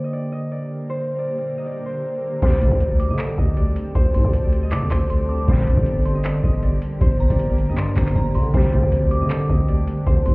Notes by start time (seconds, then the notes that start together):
Already playing: D3 A#3 G4 A#4 C5
0.04 D#5
0.13 D5
0.32 D#5
0.52 D5
0.90 C5
1.19 D5
1.38 D5
1.58 D#5
1.66 D5
1.86 C5
2.42 D2 C3 D3 G3 C4 G4 A4 C5, kick, closed hi-hat
2.61 D3, closed hi-hat
2.72 D2 D5, kick
2.80 closed hi-hat
2.91 D5
3.00 D6, closed hi-hat
3.10 D3 D#5
3.19 D5, clap, closed hi-hat
3.38 D2 D#5, kick
3.57 D5, closed hi-hat
3.76 closed hi-hat
3.95 D2 C5, kick, closed hi-hat
4.14 A2 C6, closed hi-hat
4.24 D2 D5, kick
4.33 closed hi-hat
4.44 D5
4.53 closed hi-hat
4.63 D#5
4.72 D3 D5 D6, clap, closed hi-hat
4.82 D2
4.91 D2 C5 C6, kick, clap, closed hi-hat
5.10 C6, closed hi-hat
5.29 D6
5.48 G1 D2 A#2 G3 A#3 A#4 C5, kick, closed hi-hat
5.67 G2, closed hi-hat
5.77 G1 D5, kick
5.86 closed hi-hat
5.96 D5
6.05 C6, closed hi-hat
6.15 D#5
6.24 D5, clap, closed hi-hat
6.43 G1 D#5, kick
6.63 D5, closed hi-hat
6.82 closed hi-hat
7.01 G1 C5, kick, closed hi-hat
7.20 A#5, closed hi-hat
7.30 G1 D5, kick, closed hi-hat
7.39 closed hi-hat
7.49 D5
7.58 closed hi-hat
7.69 G2 D#5
7.77 D5 C6, clap, closed hi-hat
7.97 G1 C5 A#5, kick, clap, closed hi-hat
8.03 clap, closed hi-hat
8.09 closed hi-hat
8.16 G1 A#5, kick, closed hi-hat
8.35 D3 C6, open hi-hat
8.49 D3
8.53 D2 C3 G3 C4 A4 C5, kick, closed hi-hat
8.58 G4
8.73 D3, closed hi-hat
8.83 D2 D5, kick
8.92 closed hi-hat
9.02 D5
9.11 D6, closed hi-hat
9.21 D3 D#5
9.30 D5, clap, closed hi-hat
9.49 D2 D#5, kick
9.68 D5, closed hi-hat
9.88 closed hi-hat
10.06 D2 C5, kick, closed hi-hat
10.26 A2 C6, closed hi-hat